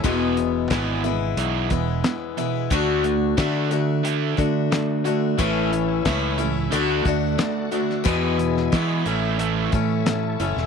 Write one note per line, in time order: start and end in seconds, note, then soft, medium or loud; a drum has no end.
0.03 0.67 E1 medium
0.03 0.35 E2 medium
0.03 0.71 E2 medium
0.03 0.71 B2 medium
0.03 0.35 B2 medium
0.03 0.69 E3 medium
0.03 0.36 E3 loud
0.03 0.70 G#3 medium
0.03 0.71 B3 medium
0.03 0.71 E4 medium
0.03 kick loud
0.03 closed hi-hat medium
0.37 0.68 E2 medium
0.37 0.68 B2 medium
0.37 closed hi-hat medium
0.70 1.34 G#1 medium
0.70 1.02 E2 medium
0.70 1.02 B2 loud
0.70 1.04 E3 medium
0.70 1.03 E3 loud
0.70 1.04 G#3 medium
0.70 1.04 B3 medium
0.70 1.03 E4 medium
0.70 kick medium
0.70 snare loud
0.70 closed hi-hat medium
1.04 1.34 E2 medium
1.04 1.34 B2 medium
1.04 1.71 E3 medium
1.04 1.71 G#3 medium
1.04 1.71 B3 medium
1.04 1.70 E4 medium
1.04 closed hi-hat medium
1.37 1.68 B1 medium
1.37 1.69 E2 medium
1.37 1.69 B2 medium
1.37 1.69 E3 medium
1.37 closed hi-hat medium
1.70 2.01 E1 medium
1.70 2.01 E2 medium
1.70 2.01 B2 medium
1.70 2.38 E3 soft
1.70 2.38 G#3 soft
1.70 2.37 B3 medium
1.70 2.37 E4 medium
1.70 kick medium
1.70 closed hi-hat medium
2.04 2.34 E2 medium
2.04 2.34 B2 medium
2.04 snare loud
2.04 closed hi-hat medium
2.37 2.67 E2 medium
2.37 2.67 B2 medium
2.37 2.71 E3 soft
2.37 2.72 G#3 soft
2.37 2.71 B3 medium
2.37 2.71 E4 medium
2.37 closed hi-hat medium
2.70 3.34 D2 medium
2.70 3.02 D3 medium
2.70 3.36 D3 medium
2.70 3.02 A3 loud
2.70 3.38 A3 loud
2.70 3.03 D4 medium
2.70 3.38 D4 medium
2.70 3.38 F#4 loud
2.70 kick loud
2.70 closed hi-hat medium
3.04 3.34 D3 medium
3.04 3.34 A3 medium
3.04 closed hi-hat medium
3.37 3.69 D3 medium
3.37 3.71 D3 medium
3.37 4.34 D3 medium
3.37 3.69 A3 medium
3.37 3.71 A3 medium
3.37 3.69 D4 medium
3.37 3.71 D4 medium
3.37 3.70 F#4 medium
3.37 kick medium
3.37 snare loud
3.37 closed hi-hat medium
3.70 4.01 D3 medium
3.70 4.01 A3 medium
3.70 4.38 A3 soft
3.70 4.37 D4 medium
3.70 4.36 F#4 medium
3.70 closed hi-hat medium
4.03 4.35 D3 medium
4.03 4.36 A3 medium
4.03 4.36 D4 medium
4.03 closed hi-hat loud
4.37 4.68 D3 medium
4.37 5.34 D3 medium
4.37 4.68 A3 medium
4.37 5.06 A3 soft
4.37 5.05 D4 medium
4.37 5.04 F#4 medium
4.37 kick medium
4.37 closed hi-hat medium
4.71 5.01 D3 medium
4.71 5.02 A3 medium
4.71 snare loud
4.71 closed hi-hat medium
5.04 5.35 D3 medium
5.04 5.35 A3 medium
5.04 5.38 A3 soft
5.04 5.39 D4 medium
5.04 5.38 F#4 medium
5.04 closed hi-hat medium
5.37 6.02 A1 medium
5.37 5.69 A2 medium
5.37 6.05 A2 medium
5.37 5.70 E3 medium
5.37 6.04 E3 loud
5.37 5.70 A3 loud
5.37 6.05 A3 medium
5.37 6.70 C#4 medium
5.37 6.06 C#4 loud
5.37 6.71 E4 medium
5.37 6.06 E4 medium
5.37 8.03 A4 soft
5.37 6.70 E5 medium
5.37 kick loud
5.37 closed hi-hat medium
5.72 6.02 A2 medium
5.72 6.02 E3 medium
5.72 closed hi-hat medium
6.05 6.68 C#2 medium
6.05 6.37 A2 medium
6.05 6.39 E3 medium
6.05 6.37 E3 medium
6.05 6.39 A3 medium
6.05 6.37 A3 loud
6.05 6.38 C#4 medium
6.05 6.37 E4 medium
6.05 kick medium
6.05 snare loud
6.05 closed hi-hat medium
6.38 6.69 A2 medium
6.38 6.69 E3 medium
6.38 6.71 A3 medium
6.38 6.72 C#4 medium
6.38 6.72 E4 medium
6.38 closed hi-hat medium
6.71 7.03 D2 loud
6.71 7.03 D3 medium
6.71 7.05 D3 medium
6.71 7.03 A3 loud
6.71 7.06 A3 medium
6.71 7.04 D4 medium
6.71 7.06 D4 medium
6.71 8.05 D4 medium
6.71 8.05 F#4 medium
6.71 7.05 F#4 medium
6.71 8.05 F#5 medium
6.71 closed hi-hat medium
7.04 7.36 D2 medium
7.04 7.35 D3 medium
7.04 7.35 A3 medium
7.04 7.71 D4 medium
7.04 7.70 F#4 medium
7.04 kick medium
7.04 closed hi-hat medium
7.08 7.73 A3 medium
7.38 7.68 D3 medium
7.38 7.69 A3 medium
7.38 snare loud
7.38 closed hi-hat medium
7.71 8.02 D3 medium
7.71 8.02 A3 medium
7.71 8.05 A3 soft
7.71 8.05 D4 soft
7.71 8.05 F#4 medium
7.71 closed hi-hat medium
7.90 snare soft
8.04 8.71 E2 medium
8.04 8.37 E2 medium
8.04 8.68 E2 medium
8.04 8.72 B2 medium
8.04 8.37 B2 medium
8.04 8.71 E3 medium
8.04 8.37 E3 medium
8.04 8.71 G#3 loud
8.04 8.72 B3 loud
8.04 10.66 E4 medium
8.04 8.72 E4 medium
8.04 9.04 G#4 medium
8.04 9.04 B4 medium
8.04 9.04 G#5 medium
8.04 kick loud
8.04 closed hi-hat medium
8.39 8.69 E2 medium
8.39 8.69 B2 medium
8.39 closed hi-hat medium
8.57 snare soft
8.72 9.03 E2 medium
8.72 9.04 B2 medium
8.72 9.06 E3 medium
8.72 9.03 E3 medium
8.72 9.04 E3 loud
8.72 9.06 G#3 medium
8.72 9.06 B3 medium
8.72 9.04 E4 medium
8.72 kick medium
8.72 snare medium
8.72 closed hi-hat medium
9.05 9.68 A1 medium
9.05 9.37 A2 medium
9.05 9.37 E3 loud
9.05 9.37 A3 loud
9.05 9.73 A3 medium
9.05 9.73 C#4 medium
9.05 9.71 E4 medium
9.05 10.66 A4 medium
9.05 10.66 C#5 soft
9.05 10.66 A5 medium
9.05 closed hi-hat medium
9.38 9.70 A2 medium
9.38 9.70 E3 medium
9.38 9.71 A3 medium
9.38 closed hi-hat medium
9.72 10.02 A2 medium
9.72 10.35 A2 medium
9.72 10.02 E3 medium
9.72 10.40 A3 medium
9.72 10.40 C#4 medium
9.72 10.38 E4 medium
9.72 kick medium
9.72 closed hi-hat medium
10.06 10.36 A2 medium
10.06 10.36 E3 medium
10.06 snare loud
10.06 closed hi-hat medium
10.40 10.54 F#1 medium
10.40 10.66 A2 medium
10.40 10.66 E3 medium
10.40 10.66 A3 soft
10.40 10.66 C#4 medium
10.40 10.66 E4 medium
10.40 closed hi-hat medium
10.56 10.66 E1 medium
10.56 snare soft